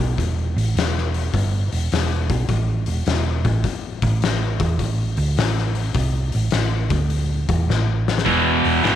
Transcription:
0.00 B1
0.18 E1, kick, open hi-hat
0.56 A1, open hi-hat
0.75 E1, snare, open hi-hat
0.98 snare
1.14 open hi-hat
1.34 G1, kick, open hi-hat
1.72 E1, open hi-hat
1.92 E1, snare, open hi-hat
2.30 B1, kick, open hi-hat
2.49 A1, kick, open hi-hat
2.86 E1, open hi-hat
3.06 E1, snare, open hi-hat
3.45 A1, kick, open hi-hat
3.64 kick, open hi-hat
4.02 A1, kick, open hi-hat
4.22 snare, open hi-hat
4.60 E2, kick, open hi-hat
4.79 A1, kick, open hi-hat
5.17 D2, open hi-hat
5.37 A1, snare, open hi-hat
5.58 snare
5.75 open hi-hat
5.94 C2, kick, open hi-hat
6.32 A1, open hi-hat
6.51 A1, snare, open hi-hat
6.90 D2, kick, open hi-hat
7.10 open hi-hat
7.49 E2, kick, open hi-hat
7.69 A1, snare
8.08 snare
8.18 snare
8.25 E1 E2 B2 E3, kick, open hi-hat
8.65 E1, open hi-hat
8.83 G#1 E2 B2 E3, snare, open hi-hat

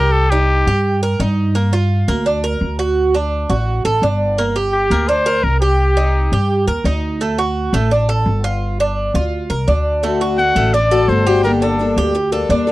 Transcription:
Already playing: C2 G4 A#4
0.12 A4
0.30 D#4 G4
0.67 G2 G4
1.03 A#4
1.20 G2 D#4
1.55 A#3
1.73 F4
2.08 D2 A#3
2.26 D4
2.44 A#4
2.61 D2
2.79 F#4
3.15 D4
3.50 A1 F#4
3.85 A1 A4
4.02 G1 D4
4.38 A#3
4.56 G4
4.72 G4
4.90 D2 A#3
5.08 D4 C5
5.26 A#4
5.44 C2 A#4
5.60 G4
5.97 D#4
6.32 G2 G4
6.67 D#2 A#4
6.84 D2 D#4
7.21 A3
7.38 F#4
7.73 A1 A3
7.91 D4
8.09 A4
8.26 G1
8.44 F4
8.80 D4
9.14 D2 F4
9.50 C2 A#4
9.68 D2 D4
10.03 D3 A3 D4 F#4
10.21 F#4
10.38 D3 A3 D4 F#4 F#5
10.56 A1 A3
10.74 D4 D5, muted steel-string acoustic guitar stroke
10.91 A3 D4 F#4 A4
11.08 G1 D3 A3 D4 F#4 C5
11.26 A3 D4 F#4 G4
11.44 D3 G3 A#3 D4 A4 A#4
11.62 D4 A4
11.79 G3 A#3 D4 A4
11.97 D2 G4
12.15 muted steel-string acoustic guitar stroke
12.32 G3 A#3 D4 A4
12.49 D#2 G3 A#3 D4 A4
12.67 G3 A#3 D4 A4

